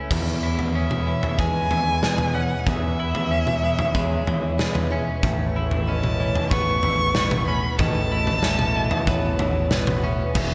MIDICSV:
0, 0, Header, 1, 7, 480
1, 0, Start_track
1, 0, Key_signature, 4, "major"
1, 0, Tempo, 640342
1, 82, Time_signature, 4, 2, 24, 8
1, 7902, End_track
2, 0, Start_track
2, 0, Title_t, "Violin"
2, 0, Program_c, 0, 40
2, 561, Note_on_c, 0, 76, 75
2, 1034, Note_on_c, 0, 80, 102
2, 1045, Note_off_c, 0, 76, 0
2, 1752, Note_on_c, 0, 78, 80
2, 1763, Note_off_c, 0, 80, 0
2, 1993, Note_on_c, 0, 76, 93
2, 2005, Note_off_c, 0, 78, 0
2, 3438, Note_off_c, 0, 76, 0
2, 4402, Note_on_c, 0, 81, 86
2, 4852, Note_off_c, 0, 81, 0
2, 4891, Note_on_c, 0, 85, 120
2, 5577, Note_off_c, 0, 85, 0
2, 5606, Note_on_c, 0, 83, 89
2, 5828, Note_off_c, 0, 83, 0
2, 5842, Note_on_c, 0, 81, 99
2, 7253, Note_off_c, 0, 81, 0
2, 7902, End_track
3, 0, Start_track
3, 0, Title_t, "Vibraphone"
3, 0, Program_c, 1, 11
3, 0, Note_on_c, 1, 76, 60
3, 75, Note_off_c, 1, 76, 0
3, 84, Note_on_c, 1, 76, 72
3, 563, Note_off_c, 1, 76, 0
3, 563, Note_on_c, 1, 87, 68
3, 803, Note_off_c, 1, 87, 0
3, 803, Note_on_c, 1, 73, 59
3, 1042, Note_on_c, 1, 71, 70
3, 1043, Note_off_c, 1, 73, 0
3, 1510, Note_off_c, 1, 71, 0
3, 1519, Note_on_c, 1, 71, 69
3, 1748, Note_off_c, 1, 71, 0
3, 1757, Note_on_c, 1, 71, 66
3, 1993, Note_on_c, 1, 87, 74
3, 2000, Note_off_c, 1, 71, 0
3, 2477, Note_off_c, 1, 87, 0
3, 2480, Note_on_c, 1, 76, 67
3, 2721, Note_off_c, 1, 76, 0
3, 2723, Note_on_c, 1, 87, 61
3, 2960, Note_on_c, 1, 73, 80
3, 2962, Note_off_c, 1, 87, 0
3, 3435, Note_on_c, 1, 71, 73
3, 3441, Note_off_c, 1, 73, 0
3, 3678, Note_on_c, 1, 76, 66
3, 3679, Note_off_c, 1, 71, 0
3, 3912, Note_off_c, 1, 76, 0
3, 3921, Note_on_c, 1, 76, 77
3, 4402, Note_off_c, 1, 76, 0
3, 4403, Note_on_c, 1, 75, 69
3, 4643, Note_off_c, 1, 75, 0
3, 4645, Note_on_c, 1, 73, 67
3, 4884, Note_off_c, 1, 73, 0
3, 4885, Note_on_c, 1, 71, 82
3, 5357, Note_off_c, 1, 71, 0
3, 5366, Note_on_c, 1, 71, 82
3, 5593, Note_off_c, 1, 71, 0
3, 5602, Note_on_c, 1, 71, 65
3, 5843, Note_off_c, 1, 71, 0
3, 5843, Note_on_c, 1, 75, 87
3, 6323, Note_off_c, 1, 75, 0
3, 6324, Note_on_c, 1, 76, 79
3, 6561, Note_on_c, 1, 75, 66
3, 6564, Note_off_c, 1, 76, 0
3, 6802, Note_off_c, 1, 75, 0
3, 6802, Note_on_c, 1, 73, 77
3, 7278, Note_on_c, 1, 71, 72
3, 7283, Note_off_c, 1, 73, 0
3, 7521, Note_off_c, 1, 71, 0
3, 7522, Note_on_c, 1, 76, 66
3, 7749, Note_off_c, 1, 76, 0
3, 7758, Note_on_c, 1, 76, 77
3, 7902, Note_off_c, 1, 76, 0
3, 7902, End_track
4, 0, Start_track
4, 0, Title_t, "String section"
4, 0, Program_c, 2, 48
4, 79, Note_on_c, 2, 59, 51
4, 81, Note_on_c, 2, 56, 53
4, 81, Note_on_c, 2, 71, 69
4, 82, Note_on_c, 2, 49, 66
4, 83, Note_on_c, 2, 64, 60
4, 3891, Note_off_c, 2, 56, 0
4, 3891, Note_off_c, 2, 59, 0
4, 3893, Note_off_c, 2, 64, 0
4, 3915, Note_on_c, 2, 59, 66
4, 3917, Note_on_c, 2, 57, 62
4, 3920, Note_on_c, 2, 64, 63
4, 5823, Note_off_c, 2, 64, 0
4, 5849, Note_on_c, 2, 66, 64
4, 7731, Note_off_c, 2, 57, 0
4, 7748, Note_off_c, 2, 66, 0
4, 7764, Note_on_c, 2, 64, 65
4, 7765, Note_on_c, 2, 56, 60
4, 7902, Note_off_c, 2, 49, 0
4, 7902, Note_off_c, 2, 56, 0
4, 7902, Note_off_c, 2, 59, 0
4, 7902, Note_off_c, 2, 64, 0
4, 7902, Note_off_c, 2, 71, 0
4, 7902, End_track
5, 0, Start_track
5, 0, Title_t, "Clean electric guitar"
5, 0, Program_c, 3, 27
5, 0, Note_on_c, 3, 57, 51
5, 0, Note_on_c, 3, 61, 53
5, 0, Note_on_c, 3, 64, 52
5, 81, Note_off_c, 3, 64, 0
5, 83, Note_off_c, 3, 61, 0
5, 83, Note_on_c, 3, 40, 67
5, 84, Note_off_c, 3, 57, 0
5, 322, Note_on_c, 3, 64, 57
5, 564, Note_on_c, 3, 61, 54
5, 803, Note_on_c, 3, 52, 52
5, 1045, Note_on_c, 3, 56, 63
5, 1281, Note_off_c, 3, 52, 0
5, 1283, Note_off_c, 3, 40, 0
5, 1284, Note_on_c, 3, 52, 57
5, 1514, Note_off_c, 3, 56, 0
5, 1523, Note_on_c, 3, 56, 57
5, 1759, Note_off_c, 3, 61, 0
5, 1762, Note_on_c, 3, 61, 59
5, 2005, Note_on_c, 3, 40, 62
5, 2244, Note_off_c, 3, 64, 0
5, 2247, Note_on_c, 3, 64, 69
5, 2478, Note_off_c, 3, 61, 0
5, 2481, Note_on_c, 3, 61, 57
5, 2721, Note_off_c, 3, 52, 0
5, 2722, Note_off_c, 3, 56, 0
5, 2724, Note_on_c, 3, 52, 54
5, 2965, Note_on_c, 3, 56, 64
5, 3203, Note_off_c, 3, 52, 0
5, 3204, Note_off_c, 3, 40, 0
5, 3206, Note_on_c, 3, 52, 61
5, 3435, Note_off_c, 3, 56, 0
5, 3444, Note_on_c, 3, 56, 65
5, 3683, Note_off_c, 3, 61, 0
5, 3686, Note_on_c, 3, 61, 70
5, 3923, Note_off_c, 3, 56, 0
5, 3928, Note_on_c, 3, 45, 65
5, 4166, Note_off_c, 3, 64, 0
5, 4169, Note_on_c, 3, 64, 69
5, 4407, Note_off_c, 3, 61, 0
5, 4410, Note_on_c, 3, 61, 60
5, 4646, Note_off_c, 3, 52, 0
5, 4649, Note_on_c, 3, 52, 61
5, 4889, Note_on_c, 3, 59, 68
5, 5126, Note_off_c, 3, 45, 0
5, 5126, Note_off_c, 3, 52, 0
5, 5129, Note_on_c, 3, 52, 63
5, 5367, Note_off_c, 3, 59, 0
5, 5370, Note_on_c, 3, 59, 63
5, 5602, Note_off_c, 3, 61, 0
5, 5605, Note_on_c, 3, 61, 60
5, 5842, Note_on_c, 3, 45, 67
5, 6081, Note_off_c, 3, 64, 0
5, 6084, Note_on_c, 3, 64, 64
5, 6320, Note_off_c, 3, 61, 0
5, 6323, Note_on_c, 3, 61, 64
5, 6562, Note_off_c, 3, 52, 0
5, 6565, Note_on_c, 3, 52, 61
5, 6802, Note_off_c, 3, 59, 0
5, 6805, Note_on_c, 3, 59, 63
5, 7037, Note_off_c, 3, 52, 0
5, 7040, Note_on_c, 3, 52, 63
5, 7043, Note_off_c, 3, 45, 0
5, 7277, Note_off_c, 3, 59, 0
5, 7280, Note_on_c, 3, 59, 60
5, 7519, Note_off_c, 3, 61, 0
5, 7522, Note_on_c, 3, 61, 59
5, 7762, Note_on_c, 3, 40, 62
5, 7902, Note_off_c, 3, 40, 0
5, 7902, Note_off_c, 3, 52, 0
5, 7902, Note_off_c, 3, 59, 0
5, 7902, Note_off_c, 3, 61, 0
5, 7902, Note_off_c, 3, 64, 0
5, 7902, End_track
6, 0, Start_track
6, 0, Title_t, "Fingered electric bass"
6, 0, Program_c, 4, 33
6, 80, Note_on_c, 4, 40, 78
6, 904, Note_off_c, 4, 40, 0
6, 1040, Note_on_c, 4, 40, 78
6, 1247, Note_off_c, 4, 40, 0
6, 1282, Note_on_c, 4, 40, 67
6, 1899, Note_off_c, 4, 40, 0
6, 1999, Note_on_c, 4, 40, 85
6, 2823, Note_off_c, 4, 40, 0
6, 2961, Note_on_c, 4, 40, 91
6, 3167, Note_off_c, 4, 40, 0
6, 3198, Note_on_c, 4, 40, 67
6, 3817, Note_off_c, 4, 40, 0
6, 3921, Note_on_c, 4, 33, 88
6, 4744, Note_off_c, 4, 33, 0
6, 4881, Note_on_c, 4, 33, 93
6, 5088, Note_off_c, 4, 33, 0
6, 5121, Note_on_c, 4, 33, 69
6, 5739, Note_off_c, 4, 33, 0
6, 5840, Note_on_c, 4, 33, 87
6, 6665, Note_off_c, 4, 33, 0
6, 6802, Note_on_c, 4, 33, 95
6, 7008, Note_off_c, 4, 33, 0
6, 7036, Note_on_c, 4, 33, 68
6, 7656, Note_off_c, 4, 33, 0
6, 7762, Note_on_c, 4, 28, 85
6, 7902, Note_off_c, 4, 28, 0
6, 7902, End_track
7, 0, Start_track
7, 0, Title_t, "Drums"
7, 80, Note_on_c, 9, 36, 95
7, 82, Note_on_c, 9, 43, 72
7, 82, Note_on_c, 9, 49, 95
7, 155, Note_off_c, 9, 36, 0
7, 157, Note_off_c, 9, 43, 0
7, 157, Note_off_c, 9, 49, 0
7, 440, Note_on_c, 9, 43, 66
7, 515, Note_off_c, 9, 43, 0
7, 681, Note_on_c, 9, 47, 61
7, 756, Note_off_c, 9, 47, 0
7, 922, Note_on_c, 9, 43, 74
7, 997, Note_off_c, 9, 43, 0
7, 1040, Note_on_c, 9, 36, 86
7, 1115, Note_off_c, 9, 36, 0
7, 1280, Note_on_c, 9, 43, 76
7, 1355, Note_off_c, 9, 43, 0
7, 1520, Note_on_c, 9, 38, 64
7, 1520, Note_on_c, 9, 47, 66
7, 1595, Note_off_c, 9, 38, 0
7, 1595, Note_off_c, 9, 47, 0
7, 1636, Note_on_c, 9, 43, 76
7, 1636, Note_on_c, 9, 47, 66
7, 1711, Note_off_c, 9, 43, 0
7, 1711, Note_off_c, 9, 47, 0
7, 1998, Note_on_c, 9, 36, 101
7, 1998, Note_on_c, 9, 43, 67
7, 2073, Note_off_c, 9, 36, 0
7, 2073, Note_off_c, 9, 43, 0
7, 2360, Note_on_c, 9, 43, 72
7, 2435, Note_off_c, 9, 43, 0
7, 2600, Note_on_c, 9, 47, 66
7, 2675, Note_off_c, 9, 47, 0
7, 2838, Note_on_c, 9, 43, 81
7, 2913, Note_off_c, 9, 43, 0
7, 2959, Note_on_c, 9, 36, 95
7, 3034, Note_off_c, 9, 36, 0
7, 3204, Note_on_c, 9, 43, 78
7, 3279, Note_off_c, 9, 43, 0
7, 3443, Note_on_c, 9, 38, 65
7, 3443, Note_on_c, 9, 47, 69
7, 3518, Note_off_c, 9, 38, 0
7, 3518, Note_off_c, 9, 47, 0
7, 3562, Note_on_c, 9, 43, 74
7, 3562, Note_on_c, 9, 47, 68
7, 3637, Note_off_c, 9, 43, 0
7, 3637, Note_off_c, 9, 47, 0
7, 3922, Note_on_c, 9, 36, 104
7, 3924, Note_on_c, 9, 43, 74
7, 3997, Note_off_c, 9, 36, 0
7, 3999, Note_off_c, 9, 43, 0
7, 4282, Note_on_c, 9, 43, 68
7, 4357, Note_off_c, 9, 43, 0
7, 4524, Note_on_c, 9, 47, 64
7, 4599, Note_off_c, 9, 47, 0
7, 4763, Note_on_c, 9, 43, 77
7, 4838, Note_off_c, 9, 43, 0
7, 4882, Note_on_c, 9, 36, 94
7, 4957, Note_off_c, 9, 36, 0
7, 5119, Note_on_c, 9, 43, 78
7, 5194, Note_off_c, 9, 43, 0
7, 5358, Note_on_c, 9, 38, 77
7, 5358, Note_on_c, 9, 47, 64
7, 5433, Note_off_c, 9, 38, 0
7, 5433, Note_off_c, 9, 47, 0
7, 5481, Note_on_c, 9, 43, 75
7, 5481, Note_on_c, 9, 47, 80
7, 5556, Note_off_c, 9, 43, 0
7, 5556, Note_off_c, 9, 47, 0
7, 5838, Note_on_c, 9, 43, 82
7, 5841, Note_on_c, 9, 36, 102
7, 5913, Note_off_c, 9, 43, 0
7, 5916, Note_off_c, 9, 36, 0
7, 6200, Note_on_c, 9, 43, 72
7, 6275, Note_off_c, 9, 43, 0
7, 6317, Note_on_c, 9, 38, 64
7, 6392, Note_off_c, 9, 38, 0
7, 6438, Note_on_c, 9, 47, 67
7, 6513, Note_off_c, 9, 47, 0
7, 6678, Note_on_c, 9, 43, 77
7, 6753, Note_off_c, 9, 43, 0
7, 6801, Note_on_c, 9, 36, 95
7, 6875, Note_off_c, 9, 36, 0
7, 7040, Note_on_c, 9, 43, 85
7, 7115, Note_off_c, 9, 43, 0
7, 7277, Note_on_c, 9, 38, 73
7, 7277, Note_on_c, 9, 47, 74
7, 7352, Note_off_c, 9, 38, 0
7, 7352, Note_off_c, 9, 47, 0
7, 7400, Note_on_c, 9, 43, 78
7, 7400, Note_on_c, 9, 47, 80
7, 7475, Note_off_c, 9, 43, 0
7, 7475, Note_off_c, 9, 47, 0
7, 7759, Note_on_c, 9, 43, 76
7, 7759, Note_on_c, 9, 57, 90
7, 7760, Note_on_c, 9, 36, 105
7, 7834, Note_off_c, 9, 43, 0
7, 7834, Note_off_c, 9, 57, 0
7, 7835, Note_off_c, 9, 36, 0
7, 7902, End_track
0, 0, End_of_file